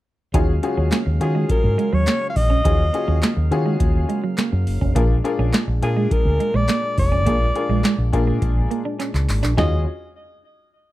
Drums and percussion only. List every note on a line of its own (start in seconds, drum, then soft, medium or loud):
0.34 kick loud
0.34 closed hi-hat loud
0.63 closed hi-hat medium
0.92 snare loud
0.92 clap medium
0.92 closed hi-hat loud
1.21 closed hi-hat medium
1.49 kick loud
1.49 closed hi-hat medium
1.79 closed hi-hat medium
2.07 snare loud
2.07 clap medium
2.07 closed hi-hat medium
2.36 kick medium
2.36 open hi-hat medium
2.65 kick loud
2.65 closed hi-hat loud
2.94 closed hi-hat medium
3.23 snare loud
3.23 clap medium
3.23 closed hi-hat loud
3.52 closed hi-hat medium
3.80 kick loud
3.80 closed hi-hat medium
4.10 closed hi-hat medium
4.38 snare loud
4.38 clap medium
4.38 closed hi-hat medium
4.67 open hi-hat medium
4.82 kick medium
4.96 kick loud
4.96 closed hi-hat loud
5.25 closed hi-hat medium
5.53 snare loud
5.53 clap medium
5.53 closed hi-hat medium
5.83 closed hi-hat medium
6.11 kick loud
6.11 closed hi-hat medium
6.40 closed hi-hat medium
6.68 snare loud
6.68 clap medium
6.68 closed hi-hat medium
6.98 kick medium
6.98 open hi-hat medium
7.26 kick loud
7.26 closed hi-hat loud
7.56 closed hi-hat medium
7.84 snare loud
7.84 clap medium
7.84 closed hi-hat medium
8.13 kick loud
8.13 closed hi-hat medium
8.42 kick loud
8.42 closed hi-hat medium
8.71 closed hi-hat medium
9.00 clap medium
9.00 closed hi-hat medium
9.15 clap medium
9.29 clap medium
9.29 open hi-hat medium
9.44 clap medium
9.58 snare medium
9.58 floor tom loud